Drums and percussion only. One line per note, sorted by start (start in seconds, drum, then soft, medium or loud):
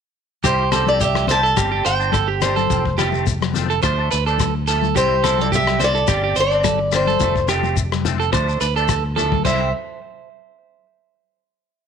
0.44 kick medium
0.44 shekere medium
0.72 cross-stick medium
0.72 closed hi-hat soft
0.72 low conga medium
0.72 shekere medium
0.87 high conga medium
0.87 shekere soft
1.00 kick medium
1.00 shekere medium
1.15 cross-stick medium
1.15 high conga medium
1.15 shekere soft
1.27 closed hi-hat soft
1.27 low conga medium
1.27 shekere medium
1.45 shekere soft
1.57 kick medium
1.57 cross-stick medium
1.57 shekere medium
1.86 closed hi-hat soft
1.86 shekere medium
2.00 shekere soft
2.12 kick medium
2.12 cross-stick medium
2.12 high conga medium
2.12 shekere medium
2.42 cross-stick medium
2.42 closed hi-hat soft
2.42 low conga medium
2.42 shekere medium
2.57 high conga medium
2.57 shekere soft
2.70 kick medium
2.70 shekere medium
2.85 kick medium
2.97 cross-stick medium
2.97 closed hi-hat soft
2.97 low conga medium
2.97 shekere medium
3.12 high conga medium
3.12 shekere soft
3.27 kick medium
3.27 shekere medium
3.41 cross-stick medium
3.41 high conga medium
3.41 shekere soft
3.54 closed hi-hat soft
3.54 low conga medium
3.54 shekere medium
3.70 shekere soft
3.83 kick medium
3.83 cross-stick medium
3.83 shekere medium
4.12 closed hi-hat soft
4.12 shekere medium
4.27 shekere soft
4.38 kick medium
4.38 cross-stick medium
4.38 high conga medium
4.38 shekere medium
4.67 closed hi-hat soft
4.67 shekere medium
4.82 high conga medium
4.82 shekere soft
4.96 kick medium
4.96 shekere medium
5.24 cross-stick medium
5.24 closed hi-hat soft
5.24 low conga medium
5.24 shekere medium
5.39 high conga medium
5.39 shekere soft
5.52 kick medium
5.52 shekere medium
5.66 cross-stick medium
5.66 high conga medium
5.66 shekere soft
5.80 closed hi-hat soft
5.80 low conga medium
5.80 shekere medium
5.95 shekere soft
6.07 kick medium
6.07 cross-stick medium
6.07 shekere medium
6.36 closed hi-hat medium
6.36 shekere medium
6.51 shekere soft
6.64 kick medium
6.64 cross-stick medium
6.64 high conga medium
6.64 shekere medium
6.92 cross-stick medium
6.92 closed hi-hat soft
6.92 low conga medium
6.92 shekere medium
7.07 high conga medium
7.07 shekere soft
7.19 kick medium
7.19 low conga medium
7.19 shekere medium
7.36 kick medium
7.36 shekere soft
7.48 cross-stick medium
7.48 closed hi-hat soft
7.48 low conga medium
7.48 shekere medium
7.63 high conga medium
7.63 shekere soft
7.77 kick medium
7.77 shekere medium
7.92 cross-stick medium
7.92 high conga medium
7.92 shekere soft
8.05 closed hi-hat soft
8.05 high conga medium
8.05 low conga medium
8.05 shekere medium
8.21 shekere soft
8.33 kick medium
8.33 cross-stick medium
8.33 shekere medium
8.49 shekere soft
8.61 closed hi-hat soft
8.61 shekere medium
8.77 shekere soft
8.89 kick medium
8.89 cross-stick medium
8.89 high conga medium
8.89 shekere medium
9.17 low conga medium
9.17 shekere medium
9.32 kick medium
9.32 high conga medium
9.45 kick medium
9.45 crash medium
9.45 high conga medium
9.45 shekere medium